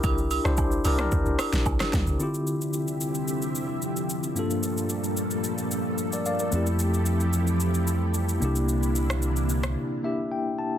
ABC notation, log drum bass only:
X:1
M:4/4
L:1/16
Q:1/4=111
K:Dm
V:1 name="Log drum bass" clef=bass
C,,3 C,,3 C,,2 D,, C,, z B,,, C,, z D,, C,, | z16 | z16 | z16 |
z16 |]